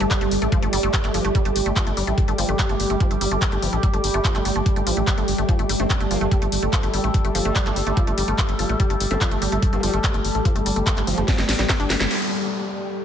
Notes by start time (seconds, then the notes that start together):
Already playing: G3 G4 D5 D6
0.00 G1 A3, closed hi-hat
0.11 G3, kick, clap, closed hi-hat
0.21 G1 A3, closed hi-hat
0.31 G1, open hi-hat
0.42 A1 A3, closed hi-hat
0.52 F3, kick, closed hi-hat
0.63 G1 A3, closed hi-hat
0.73 G1 G3, open hi-hat
0.83 G1 A3, closed hi-hat
0.94 kick, clap, closed hi-hat
1.04 G1 A3, clap, closed hi-hat
1.14 G1 F3, open hi-hat
1.25 G1 A3, closed hi-hat
1.35 G3, kick, closed hi-hat
1.45 G1 A3, closed hi-hat
1.56 G1, open hi-hat
1.66 G1 A3, closed hi-hat
1.76 F3, kick, clap, closed hi-hat
1.87 G1 A3, closed hi-hat
1.97 G1 G3, open hi-hat
2.07 A1 A3, closed hi-hat
2.18 kick, closed hi-hat
2.28 G1 A3, closed hi-hat
2.38 G1 F3, open hi-hat
2.49 G1 A3, closed hi-hat
2.59 G3, kick, clap, closed hi-hat
2.69 G1 A3, closed hi-hat
2.80 G1, open hi-hat
2.90 G1 A3, closed hi-hat
3.00 F3, kick, closed hi-hat
3.11 G1 A3, closed hi-hat
3.21 G1 G3, open hi-hat
3.31 G1 A3, closed hi-hat
3.42 kick, clap, closed hi-hat
3.52 G1 A3, closed hi-hat
3.62 G1 F3, open hi-hat
3.73 A1 A3, closed hi-hat
3.83 G3, kick, closed hi-hat
3.94 G1 A3, closed hi-hat
4.04 G1, open hi-hat
4.14 G1 A3
4.25 F3, kick, clap, closed hi-hat
4.35 G1 A3, clap, closed hi-hat
4.45 G1 G3, open hi-hat
4.56 G1 A3, closed hi-hat
4.66 kick, closed hi-hat
4.76 G1 A3, closed hi-hat
4.87 A1 F3, open hi-hat
4.97 A1 A3, closed hi-hat
5.07 G3, kick, clap, closed hi-hat
5.18 G1 A3, closed hi-hat
5.28 G1, open hi-hat
5.38 G1 A3, closed hi-hat
5.49 F3 A4, kick, closed hi-hat
5.59 G1 A3, closed hi-hat
5.69 G1 G3, open hi-hat
5.80 G1 A3 C4, closed hi-hat
5.90 C4, kick, clap, closed hi-hat
6.00 G1 A3, closed hi-hat
6.11 G1 F3 A#3, open hi-hat
6.21 G1 A3, closed hi-hat
6.31 G3, kick, closed hi-hat
6.42 G1 A3, closed hi-hat
6.52 G1, open hi-hat
6.62 G1 A3, closed hi-hat
6.73 F3, kick, clap, closed hi-hat
6.83 G1 A3, closed hi-hat
6.94 G1 G3, open hi-hat
7.04 A1 A3, closed hi-hat
7.14 kick, closed hi-hat
7.25 G1 A3, closed hi-hat
7.35 G1 F3, open hi-hat
7.45 G1 G3 A3, closed hi-hat
7.56 G3, kick, clap, closed hi-hat
7.66 G1 A3, clap, closed hi-hat
7.76 G1, open hi-hat
7.87 G1 A3, closed hi-hat
7.97 F3, kick, closed hi-hat
8.07 G1 A3, closed hi-hat
8.18 G1 G3, open hi-hat
8.28 G1 A3, closed hi-hat
8.38 kick, clap, closed hi-hat
8.49 G1 A3, closed hi-hat
8.59 G1 F3, open hi-hat
8.69 A1 A3, closed hi-hat
8.80 G3, kick, closed hi-hat
8.90 G1 A3, closed hi-hat
9.00 G1, open hi-hat
9.11 G1 A3 C4, closed hi-hat
9.21 F3 C4, kick, clap, closed hi-hat
9.31 G1 A3, closed hi-hat
9.42 G1 G3, open hi-hat
9.52 G1 A3, closed hi-hat
9.62 kick, closed hi-hat
9.73 G1 A3 A#3, closed hi-hat
9.83 G1 F3 G3, open hi-hat
9.94 G1 A3, closed hi-hat
10.04 G3, kick, clap, closed hi-hat
10.14 G1 A3, closed hi-hat
10.25 G1, open hi-hat
10.35 A1 A3, closed hi-hat
10.45 F3, kick, closed hi-hat
10.56 G1 A3, closed hi-hat
10.66 G1 G3, open hi-hat
10.76 G1 A3, closed hi-hat
10.87 kick, clap, closed hi-hat
10.97 G1 A3, clap, closed hi-hat
11.07 G1 F3, open hi-hat
11.18 G1 A3, closed hi-hat
11.28 G3, kick, snare, closed hi-hat
11.38 G1 A3, snare, closed hi-hat
11.49 A1, snare, open hi-hat
11.59 A1 G3, snare, closed hi-hat
11.69 A3, kick, snare, clap, closed hi-hat
11.80 G1 D4, closed hi-hat
11.90 G1 A#3, snare, open hi-hat
12.00 G1 A3, snare, closed hi-hat
12.11 G3 G4, crash, downlifter
12.29 D6
12.37 G4 D5